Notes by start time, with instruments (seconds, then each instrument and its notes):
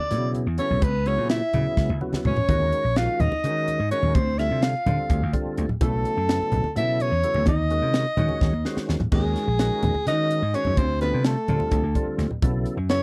Already playing: hollow-body jazz guitar D4, soprano saxophone D5
0.10 slap bass B2, tonewheel organ C#3 F#3 B3 E4 G#4, snare, closed hi-hat
0.34 closed hi-hat, low conga
0.47 slap bass E2
0.58 tonewheel organ C#3 F#3 B3 E4 A4, hollow-body jazz guitar C#4, soprano saxophone C#5, closed hi-hat, low conga
0.70 slap bass B1, low conga
0.82 slap bass C#2, hollow-body jazz guitar B3, soprano saxophone B4, kick, closed hi-hat, high conga, low conga
1.06 tonewheel organ C#3 F#3 B3 E4 G#4, hollow-body jazz guitar C#4, soprano saxophone C#5, closed hi-hat, low conga
1.18 slap bass A#2, low conga
1.29 hollow-body jazz guitar E4, soprano saxophone E5, snare, closed hi-hat
1.53 tonewheel organ C#3 F#3 B3 E4 G#4, slap bass C#3, closed hi-hat, low conga
1.77 slap bass C#2, kick, snare
1.89 slap bass C#2, high tom, high conga
2.01 tonewheel organ C#3 F#3 B3 E4 F#4, high conga
2.13 muted slap bass stroke, snare, high conga
2.25 slap bass C#2, hollow-body jazz guitar C#4, soprano saxophone C#5, floor tom, low conga
2.36 muted slap bass stroke, floor tom, low conga
2.48 slap bass D#2, tonewheel organ D#3 G#3 C#4 F#4 A#4, kick, closed hi-hat, high conga
2.61 low conga
2.72 closed hi-hat
2.84 slap bass A#1
2.96 tonewheel organ D#3 G#3 C#4 F#4 A#4, hollow-body jazz guitar F4, soprano saxophone F5, snare, closed hi-hat
3.08 muted slap bass stroke
3.20 slap bass D#2, hollow-body jazz guitar D#4, soprano saxophone D#5, closed hi-hat, low conga
3.32 high conga, low conga
3.44 slap bass D#3, tonewheel organ D#3 G#3 C#4 F#4 A#4, closed hi-hat
3.68 closed hi-hat, low conga
3.79 slap bass G#2
3.91 tonewheel organ D#3 G#3 C#4 F#4 A#4, hollow-body jazz guitar C#4, soprano saxophone C#5, closed hi-hat
4.03 slap bass D#2, low conga
4.15 slap bass D2, hollow-body jazz guitar C4, soprano saxophone C5, kick, closed hi-hat, high conga
4.27 low conga
4.38 tonewheel organ D3 G3 C4 F4 A4, hollow-body jazz guitar E4, soprano saxophone E5, snare, closed hi-hat
4.51 slap bass C3, low conga
4.62 hollow-body jazz guitar F4, soprano saxophone F5, snare, closed hi-hat
4.86 tonewheel organ D3 G3 C4 F4 A4, slap bass D3, closed hi-hat, low conga
4.98 low conga
5.10 slap bass D2, kick, closed hi-hat
5.23 slap bass D2
5.33 tonewheel organ D3 G3 C4 F4 A4, kick, closed hi-hat, low conga
5.46 muted slap bass stroke
5.57 slap bass D2, closed hi-hat, low conga
5.69 low conga
5.81 slap bass B1, tonewheel organ C#3 F#3 B3 E4 A4, hollow-body jazz guitar A3, soprano saxophone A4, kick, closed hi-hat, high conga
5.93 low conga
6.05 closed hi-hat
6.17 slap bass F#2, low conga
6.28 tonewheel organ C#3 F#3 B3 E4 A4, snare, closed hi-hat
6.41 muted slap bass stroke
6.52 slap bass B1, closed hi-hat, low conga
6.64 high conga, low conga
6.75 slap bass B2, tonewheel organ C#3 F#3 B3 E4 A4, hollow-body jazz guitar E4, soprano saxophone E5, closed hi-hat
7.00 hollow-body jazz guitar C#4, soprano saxophone C#5, closed hi-hat, low conga
7.12 slap bass E2
7.23 tonewheel organ C#3 F#3 B3 E4 A4, closed hi-hat, low conga
7.34 slap bass D2, low conga
7.46 slap bass D#2, hollow-body jazz guitar D#4, soprano saxophone D#5, kick, closed hi-hat, high conga
7.70 tonewheel organ D#3 G#3 C#4 F#4 A#4, closed hi-hat
7.82 slap bass C3
7.93 snare, closed hi-hat, low conga
8.17 slap bass D#3, tonewheel organ D#3 G#3 C#4 F#4 C#5, closed hi-hat, low conga
8.29 high conga
8.41 slap bass D#2, kick, snare
8.53 slap bass D#2
8.65 tonewheel organ D#3 G#3 C#4 F#4 C5, snare
8.77 muted slap bass stroke, snare
8.89 slap bass D#2, snare
9.00 muted slap bass stroke, floor tom, low conga
9.12 slap bass D#2, tonewheel organ D#3 G#3 C#4 F#4 A#4, hollow-body jazz guitar G#3, soprano saxophone G#4, kick, crash, high conga
9.36 snare, closed hi-hat
9.47 slap bass A#1, low conga
9.59 tonewheel organ D#3 G#3 C#4 F#4 A#4, snare, closed hi-hat
9.83 slap bass D#2, closed hi-hat, low conga
9.95 muted slap bass stroke, high conga, low conga
10.07 slap bass D#3, tonewheel organ D#3 G#3 C#4 F#4 A#4, hollow-body jazz guitar D#4, soprano saxophone D#5, snare, closed hi-hat
10.30 closed hi-hat, low conga
10.42 slap bass G#2
10.53 tonewheel organ D#3 G#3 C#4 F#4 C5, hollow-body jazz guitar C#4, soprano saxophone C#5, closed hi-hat, low conga
10.65 slap bass F#2, low conga
10.77 slap bass D2, hollow-body jazz guitar C4, soprano saxophone C5, kick, closed hi-hat, high conga
10.89 low conga
11.01 tonewheel organ D3 G3 C4 F4 A4, hollow-body jazz guitar B3, soprano saxophone B4, snare, closed hi-hat
11.13 slap bass C3, low conga
11.24 hollow-body jazz guitar A3, soprano saxophone A4, snare, closed hi-hat
11.48 tonewheel organ D3 G3 C4 F4 A4, slap bass D3, closed hi-hat, low conga
11.60 high conga, low conga
11.71 slap bass D2, kick, closed hi-hat
11.83 slap bass D2
11.95 tonewheel organ D3 G3 C4 F4 A4, kick, closed hi-hat, low conga
12.07 muted slap bass stroke
12.18 slap bass D2, snare, closed hi-hat, low conga
12.31 low conga
12.42 slap bass B1, tonewheel organ C#3 F#3 B3 E4 A4, kick, closed hi-hat, high conga
12.54 low conga
12.66 closed hi-hat
12.77 slap bass F#2, low conga
12.89 tonewheel organ C#3 F#3 B3 E4 A4, hollow-body jazz guitar C#4, soprano saxophone C#5, snare, closed hi-hat